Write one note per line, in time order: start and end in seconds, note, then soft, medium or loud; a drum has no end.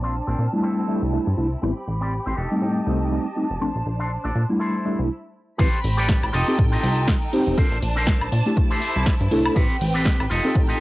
0.00 0.21 A#1 medium
0.00 2.34 C4 medium
0.00 0.14 C4 medium
0.00 0.63 D4 medium
0.00 0.14 D4 medium
0.00 0.14 F4 medium
0.00 1.61 A5 medium
0.27 0.35 A#1 medium
0.27 0.45 C4 medium
0.27 0.46 D4 medium
0.27 0.46 A#4 medium
0.39 0.48 A#2 medium
0.53 0.86 G3 medium
0.53 0.86 A3 medium
0.53 0.86 D4 medium
0.53 0.86 E4 medium
0.63 1.02 C4 medium
0.63 1.62 E4 medium
0.63 1.02 E4 medium
0.63 1.03 A4 medium
0.88 1.10 G3 medium
0.88 1.10 A3 medium
0.88 1.11 D4 medium
0.88 1.11 E4 loud
1.02 1.19 C2 medium
1.12 1.25 G3 medium
1.12 1.25 A3 medium
1.12 1.25 D4 medium
1.12 1.26 E4 medium
1.27 1.35 G2 loud
1.37 1.56 C2 medium
1.37 1.45 G3 medium
1.37 1.45 A3 medium
1.37 1.46 D4 medium
1.37 1.46 E4 medium
1.37 muted clean electric guitar stroke soft
1.62 1.73 A1 loud
1.62 1.70 G3 medium
1.62 1.70 B3 medium
1.62 1.71 C4 medium
1.62 1.71 E4 medium
1.62 3.59 G4 medium
1.62 2.36 B5 medium
1.62 muted clean electric guitar stroke loud
1.76 muted clean electric guitar stroke soft
1.88 2.20 A1 medium
2.01 2.12 C4 medium
2.01 2.12 G4 medium
2.01 2.13 D5 medium
2.26 2.34 A1 medium
2.26 2.36 C4 medium
2.26 2.36 G4 medium
2.26 2.37 C5 medium
2.36 2.47 F1 medium
2.36 3.17 D#4 medium
2.36 3.17 G4 medium
2.36 3.17 A4 medium
2.36 3.60 D#5 medium
2.36 5.07 A5 medium
2.51 2.84 G3 medium
2.51 2.84 A3 medium
2.51 2.84 C4 medium
2.51 2.84 D#4 medium
2.62 2.80 A2 medium
2.86 3.19 C2 loud
2.86 3.09 G3 medium
2.86 3.09 A3 medium
2.86 3.09 C4 medium
2.86 3.09 D#4 loud
3.11 3.24 G3 medium
3.11 3.24 A3 medium
3.11 3.24 C4 medium
3.11 3.24 D#4 medium
3.36 3.44 G3 medium
3.36 3.44 A3 medium
3.36 3.44 C4 medium
3.36 3.44 D#4 medium
3.36 muted clean electric guitar stroke soft
3.50 3.58 F1 medium
3.60 3.72 A#1 soft
3.60 3.69 F3 medium
3.60 3.69 A3 medium
3.60 3.69 C4 medium
3.60 4.59 D4 medium
3.60 3.69 D4 medium
3.60 5.08 C5 medium
3.60 muted clean electric guitar stroke loud
3.74 3.83 A#1 medium
3.74 muted clean electric guitar stroke soft
3.86 4.18 A#1 medium
3.99 4.10 D4 medium
3.99 4.11 A4 medium
3.99 4.11 C5 medium
4.24 4.32 A#1 medium
4.24 4.42 D4 medium
4.24 4.42 A4 medium
4.24 4.43 D5 medium
4.35 4.45 A#2 medium
4.49 4.82 G3 medium
4.49 4.82 A3 medium
4.49 4.83 D4 medium
4.49 4.83 E4 medium
4.59 4.99 E4 medium
4.59 5.09 E4 medium
4.59 4.99 A4 medium
4.59 4.99 C5 medium
4.85 5.07 G3 medium
4.85 5.07 A3 medium
4.85 5.07 D4 medium
4.85 5.08 E4 loud
4.99 5.10 C2 medium
5.58 5.69 A1 loud
5.58 5.67 C4 medium
5.58 6.33 C4 medium
5.58 5.67 E4 medium
5.58 5.78 G4 loud
5.58 5.67 G4 medium
5.58 5.78 A4 medium
5.58 5.79 B4 loud
5.58 5.67 B4 medium
5.58 5.79 C5 loud
5.58 7.56 G5 medium
5.58 6.33 B5 medium
5.58 kick loud
5.58 closed hi-hat medium
5.74 closed hi-hat medium
5.84 6.16 A1 medium
5.84 open hi-hat loud
5.97 6.28 G4 medium
5.97 6.28 A4 medium
5.97 6.28 B4 medium
5.97 6.29 D5 medium
5.97 closed hi-hat soft
6.09 kick loud
6.09 snare loud
6.09 closed hi-hat medium
6.23 6.31 A1 medium
6.23 closed hi-hat medium
6.23 high woodblock medium
6.33 6.44 F1 medium
6.33 7.57 D#4 medium
6.33 6.64 F4 medium
6.33 6.64 G4 medium
6.33 7.56 A4 medium
6.33 6.64 A4 medium
6.33 6.64 D#5 loud
6.33 open hi-hat medium
6.48 6.81 C4 medium
6.48 6.81 D#4 medium
6.48 6.81 G4 medium
6.48 6.81 A4 medium
6.59 6.77 A2 medium
6.59 kick loud
6.59 closed hi-hat medium
6.72 7.15 F4 medium
6.72 7.15 G4 medium
6.72 7.15 A4 medium
6.72 7.15 D#5 loud
6.72 closed hi-hat medium
6.83 7.15 C2 loud
6.83 open hi-hat loud
6.97 closed hi-hat soft
7.08 kick loud
7.08 snare loud
7.08 closed hi-hat medium
7.22 closed hi-hat medium
7.33 7.55 C4 medium
7.33 7.55 D#4 medium
7.33 7.55 G4 medium
7.33 7.56 C5 loud
7.33 open hi-hat medium
7.47 7.54 F1 loud
7.57 7.65 C4 medium
7.57 7.77 D4 loud
7.57 8.56 D4 medium
7.57 7.77 A4 loud
7.57 7.66 A4 medium
7.57 7.77 A#4 loud
7.57 8.56 C5 medium
7.57 7.78 C5 loud
7.57 9.54 A5 medium
7.57 kick loud
7.57 closed hi-hat medium
7.72 7.79 A#1 medium
7.72 closed hi-hat medium
7.82 8.15 A#1 medium
7.82 open hi-hat loud
7.96 8.27 D4 medium
7.96 8.27 A4 medium
7.96 8.27 A#4 medium
7.96 8.27 C5 medium
7.96 closed hi-hat soft
8.07 kick loud
8.07 snare loud
8.07 closed hi-hat medium
8.21 8.29 A#1 medium
8.21 closed hi-hat medium
8.21 high woodblock medium
8.32 8.42 A#2 medium
8.32 open hi-hat medium
8.46 8.79 A3 medium
8.46 8.79 D4 medium
8.46 8.79 E4 medium
8.46 8.79 G4 medium
8.56 9.55 E4 medium
8.56 9.55 C5 medium
8.56 muted clean electric guitar stroke medium
8.56 kick loud
8.56 closed hi-hat medium
8.70 9.13 E4 medium
8.70 9.13 G4 medium
8.70 9.14 A4 medium
8.70 9.14 C5 medium
8.70 closed hi-hat medium
8.82 open hi-hat loud
8.96 9.12 C2 medium
8.96 closed hi-hat soft
9.06 kick loud
9.06 snare loud
9.06 closed hi-hat medium
9.21 9.28 G2 loud
9.21 closed hi-hat medium
9.31 9.50 C2 medium
9.31 9.53 A3 loud
9.31 9.54 D4 medium
9.31 9.54 E4 medium
9.31 9.54 A4 loud
9.31 open hi-hat loud
9.45 high woodblock medium
9.55 9.66 A1 loud
9.55 9.75 C4 loud
9.55 9.64 C4 medium
9.55 10.30 C4 medium
9.55 9.64 E4 medium
9.55 9.75 G4 loud
9.55 9.75 A4 medium
9.55 10.30 B4 medium
9.55 9.76 B4 loud
9.55 9.64 B4 medium
9.55 10.29 G5 medium
9.55 kick loud
9.55 closed hi-hat medium
9.70 closed hi-hat medium
9.81 10.13 A1 medium
9.81 open hi-hat loud
9.94 10.25 C4 medium
9.94 10.25 G4 medium
9.94 10.25 A4 medium
9.94 10.25 B4 loud
9.94 closed hi-hat soft
10.05 kick loud
10.05 snare loud
10.05 closed hi-hat medium
10.20 10.27 A1 medium
10.20 closed hi-hat medium
10.20 high woodblock medium
10.30 10.40 F1 medium
10.30 10.80 D#4 medium
10.30 10.61 F4 medium
10.30 10.61 G4 medium
10.30 10.80 A4 medium
10.30 10.61 A4 medium
10.30 10.61 D#5 medium
10.30 10.80 G5 medium
10.30 open hi-hat loud
10.44 10.77 C4 medium
10.44 10.77 D#4 medium
10.44 10.78 G4 medium
10.44 10.78 A4 medium
10.55 10.74 A2 loud
10.55 kick loud
10.55 closed hi-hat medium
10.68 10.80 F4 medium
10.68 10.80 G4 medium
10.68 10.80 A4 medium
10.68 10.80 D#5 loud
10.68 closed hi-hat medium